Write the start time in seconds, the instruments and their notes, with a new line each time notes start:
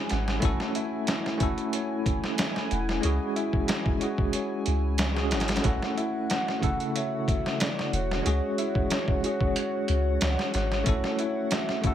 Already playing: tine electric piano G#3 C#4 F#4 G#4, felt piano E4 F#4 C#5, analog synth pad E4 G#5
0.09 808-style bass G#1, felt piano F#5, snare, closed hi-hat
0.28 snare
0.40 808-style bass A1, tine electric piano A3 C#4 E4, felt piano F#4, kick, closed hi-hat
0.45 tine electric piano A4
0.60 snare
0.75 felt piano E4, closed hi-hat
1.07 snare, closed hi-hat
1.26 snare
1.38 tine electric piano A3 C#4 E4, felt piano F#4, kick, closed hi-hat
1.43 tine electric piano A4
1.58 closed hi-hat
1.73 felt piano C#5, closed hi-hat
2.06 kick, closed hi-hat
2.24 snare
2.38 snare, closed hi-hat
2.56 snare
2.71 808-style bass E1, felt piano F#5, closed hi-hat
2.89 snare
3.01 808-style bass C#2, tine electric piano G#3 C#4 F#4, felt piano F#4, closed hi-hat
3.05 tine electric piano G#4
3.36 felt piano E4, closed hi-hat
3.53 kick
3.68 snare, closed hi-hat
3.86 kick
3.98 tine electric piano G#3 C#4 F#4, felt piano F#4, closed hi-hat
4.03 tine electric piano G#4
4.18 kick
4.33 felt piano C#5, closed hi-hat
4.66 808-style bass C#2, closed hi-hat
4.98 snare, closed hi-hat
5.14 tine electric piano G#3 C#4 F#4 G#4, snare
5.31 808-style bass G#1, felt piano F#5, snare, closed hi-hat
5.40 snare, closed hi-hat
5.48 snare, closed hi-hat
5.56 snare, closed hi-hat
5.61 808-style bass A1, tine electric piano A3 C#4 E4, felt piano F#4, kick, closed hi-hat
5.65 analog synth pad F#4 F#5, tine electric piano A4, soft synth lead F#5
5.82 snare
5.97 felt piano E4, closed hi-hat
6.30 snare, closed hi-hat
6.48 snare
6.59 tine electric piano C#3 A3 E4, felt piano F#4, kick, closed hi-hat
6.64 tine electric piano A4
6.80 closed hi-hat
6.96 felt piano C#5, soft synth lead E5, closed hi-hat
7.28 soft synth lead E5, kick, closed hi-hat
7.46 snare
7.60 soft synth lead D5, snare, closed hi-hat
7.79 snare
7.93 808-style bass E1, soft synth lead C#5, felt piano F#5, closed hi-hat
8.11 snare
8.22 tine electric piano G#3 C#4 F#4, felt piano F#4, closed hi-hat
8.26 808-style bass C#2, tine electric piano G#4
8.58 felt piano E4, closed hi-hat
8.75 kick
8.90 snare, closed hi-hat
9.08 kick
9.21 tine electric piano G#3 C#4 F#4, felt piano F#4, closed hi-hat
9.26 tine electric piano G#4
9.41 kick
9.56 felt piano C#5, closed hi-hat
9.88 808-style bass C#2, closed hi-hat
10.21 808-style bass C#2, snare, closed hi-hat
10.39 snare
10.53 808-style bass G#1, soft synth lead C#5, felt piano F#5, snare, closed hi-hat
10.72 snare
10.84 808-style bass A1, tine electric piano A3 C#4 E4, felt piano F#4, kick, closed hi-hat
10.89 tine electric piano A4
11.04 snare
11.19 felt piano E4, closed hi-hat
11.51 soft synth lead E5, snare, closed hi-hat
11.69 snare
11.82 tine electric piano C#3 A3 E4, felt piano F#4, soft synth lead F#5, kick, closed hi-hat
11.87 tine electric piano A4